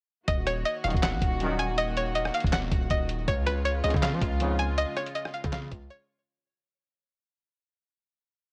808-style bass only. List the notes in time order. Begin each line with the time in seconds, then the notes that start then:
0.28 D#1
0.84 D#1
0.94 D#1
1.13 A#1
1.21 D#1
2.44 D#1
2.72 D#1
2.90 D#1
3.28 C#2
3.84 C#2
3.94 C#3
4.13 F3
4.21 C#2
5.44 C#3
5.71 C#2